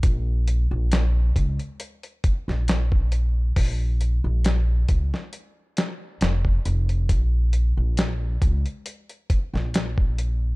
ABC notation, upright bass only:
X:1
M:4/4
L:1/16
Q:"Swing 16ths" 1/4=68
K:Bbm
V:1 name="Upright bass" clef=bass
B,,,3 B,,,3 D,, z4 B,,,4- B,,, | B,,,3 B,,,3 D,, z4 z F,,,2 F,,,2 | B,,,3 B,,,3 D,, z4 B,,,4- B,,, |]